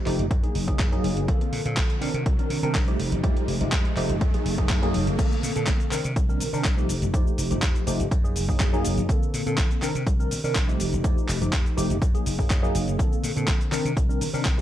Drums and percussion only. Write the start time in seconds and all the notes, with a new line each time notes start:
0.06 clap, open hi-hat
0.19 closed hi-hat
0.31 kick, closed hi-hat
0.44 closed hi-hat
0.55 open hi-hat
0.68 kick, closed hi-hat
0.79 kick, clap, closed hi-hat
0.93 closed hi-hat
1.04 open hi-hat
1.17 closed hi-hat
1.28 kick, closed hi-hat
1.41 closed hi-hat
1.53 open hi-hat
1.66 closed hi-hat
1.77 kick, clap, closed hi-hat
1.90 closed hi-hat
2.02 open hi-hat
2.14 closed hi-hat
2.26 kick, closed hi-hat
2.39 closed hi-hat
2.50 open hi-hat
2.63 closed hi-hat
2.75 kick, clap, closed hi-hat
2.88 closed hi-hat
3.00 open hi-hat
3.12 closed hi-hat
3.24 kick, closed hi-hat
3.37 closed hi-hat
3.48 open hi-hat
3.61 closed hi-hat
3.72 kick, clap, closed hi-hat
3.85 closed hi-hat
3.96 clap, open hi-hat
4.10 closed hi-hat
4.21 kick, closed hi-hat
4.34 closed hi-hat
4.46 open hi-hat
4.58 kick, closed hi-hat
4.69 kick, clap, closed hi-hat
4.83 closed hi-hat
4.94 open hi-hat
5.07 closed hi-hat
5.19 kick, closed hi-hat, crash, cabasa
5.32 cabasa
5.43 open hi-hat, cabasa
5.56 closed hi-hat, cabasa
5.67 kick, clap, closed hi-hat, cabasa
5.80 closed hi-hat, cabasa
5.91 clap, open hi-hat, cabasa
6.04 closed hi-hat, cabasa
6.16 kick, closed hi-hat, cabasa
6.29 cabasa
6.40 open hi-hat, cabasa
6.54 cabasa
6.64 kick, clap, closed hi-hat, cabasa
6.78 cabasa
6.89 open hi-hat, cabasa
7.02 closed hi-hat, cabasa
7.14 kick, closed hi-hat, cabasa
7.27 cabasa
7.38 open hi-hat, cabasa
7.51 closed hi-hat, cabasa
7.62 kick, clap, closed hi-hat, cabasa
7.75 closed hi-hat, cabasa
7.87 open hi-hat, cabasa
8.00 closed hi-hat, cabasa
8.11 kick, closed hi-hat, cabasa
8.25 cabasa
8.36 open hi-hat, cabasa
8.49 kick, cabasa
8.60 kick, clap, closed hi-hat, cabasa
8.73 cabasa
8.85 open hi-hat, cabasa
8.98 closed hi-hat, cabasa
9.09 kick, closed hi-hat, cabasa
9.23 cabasa
9.34 open hi-hat, cabasa
9.47 closed hi-hat, cabasa
9.58 kick, clap, closed hi-hat, cabasa
9.71 closed hi-hat, cabasa
9.82 clap, open hi-hat, cabasa
9.95 closed hi-hat, cabasa
10.07 kick, closed hi-hat, cabasa
10.20 cabasa
10.31 open hi-hat, cabasa
10.45 cabasa
10.55 kick, clap, closed hi-hat, cabasa
10.69 cabasa
10.80 open hi-hat, cabasa
10.93 closed hi-hat, cabasa
11.04 kick, closed hi-hat, cabasa
11.18 cabasa
11.28 clap, open hi-hat, cabasa
11.42 closed hi-hat, cabasa
11.53 kick, clap, closed hi-hat, cabasa
11.66 closed hi-hat, cabasa
11.78 open hi-hat, cabasa
11.90 closed hi-hat, cabasa
12.02 kick, closed hi-hat, cabasa
12.15 closed hi-hat, cabasa
12.26 open hi-hat, cabasa
12.39 kick, cabasa
12.50 kick, clap, closed hi-hat, cabasa
12.64 cabasa
12.75 open hi-hat, cabasa
12.88 closed hi-hat, cabasa
12.99 kick, closed hi-hat, cabasa
13.13 cabasa
13.24 open hi-hat, cabasa
13.37 closed hi-hat, cabasa
13.48 kick, clap, closed hi-hat, cabasa
13.61 closed hi-hat, cabasa
13.72 clap, open hi-hat, cabasa
13.86 closed hi-hat, cabasa
13.97 kick, closed hi-hat, cabasa
14.10 cabasa
14.21 open hi-hat, cabasa
14.34 cabasa
14.45 kick, clap, closed hi-hat, cabasa